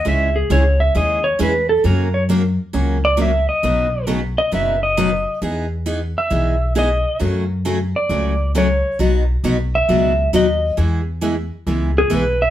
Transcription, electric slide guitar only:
X:1
M:4/4
L:1/8
Q:"Swing" 1/4=134
K:E
V:1 name="Electric slide guitar"
e G c e d c B A | ^A c z3 =d e ^d- | d2 z d e d3 | z3 e3 d2 |
z3 =d3 c2 | z3 e3 d2 | z4 z G B e |]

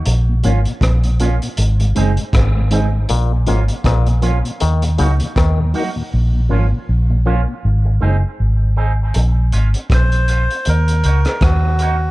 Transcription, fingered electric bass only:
X:1
M:4/4
L:1/16
Q:"Swing 16ths" 1/4=79
K:Bbm
V:1 name="Fingered electric bass" clef=bass
B,,,2 A,,, z B,,,3 z A,,,2 G,,, z A,,,4 | B,,,2 A,,, z B,,,3 z E,,2 D,, z E,,2 z2 | B,,,2 A,,, z B,,,3 z A,,,2 G,,, z A,,,4 | B,,,2 A,,, z B,,,3 z E,,2 D,, z E,,4 |]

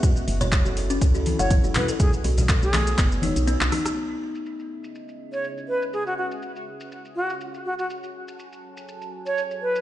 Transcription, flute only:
X:1
M:4/4
L:1/16
Q:"Swing 16ths" 1/4=122
K:C#m
V:1 name="Flute"
z8 z3 c z2 B z | G z4 G3 z8 | z8 z3 c z2 B z | G F F z6 z F z3 F F |
z8 z3 c z2 B z |]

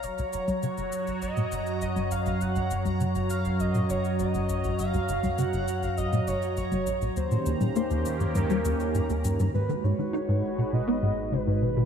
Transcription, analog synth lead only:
X:1
M:4/4
L:1/16
Q:1/4=101
K:Gblyd
V:1 name="Analog synth lead"
d4 d4 e4 e2 f2 | g4 z2 f2 e2 d2 e4 | f4 g3 f e2 d2 d4 | c4 c4 B4 z4 |
[K:G#m] B2 c6 d4 B4 |]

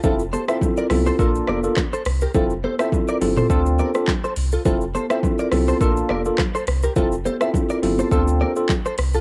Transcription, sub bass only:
X:1
M:4/4
L:1/16
Q:"Swing 16ths" 1/4=104
K:F
V:1 name="Sub bass" clef=bass
F,,,3 z3 C,,2 B,,,2 F,,,2 z2 C,,2 | F,,,3 z3 G,,,2 D,,3 z3 C,,2 | F,,,3 z3 C,,2 B,,,2 F,,,2 z2 C,,2 | F,,,3 z3 G,,,2 D,,3 z3 C,,2 |]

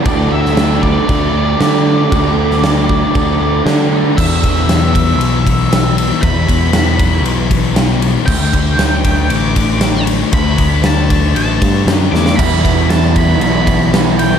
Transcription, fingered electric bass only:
X:1
M:4/4
L:1/8
Q:1/4=117
K:Em
V:1 name="Fingered electric bass" clef=bass
D,,4 D,,2 D,2 | D,,4 D,,2 D,2 | E,,4 B,,,4 | E,,4 B,,,4 |
D,,4 A,,,4 | D,,4 A,,, G,, F,, E,, | E,,4 B,,,4 |]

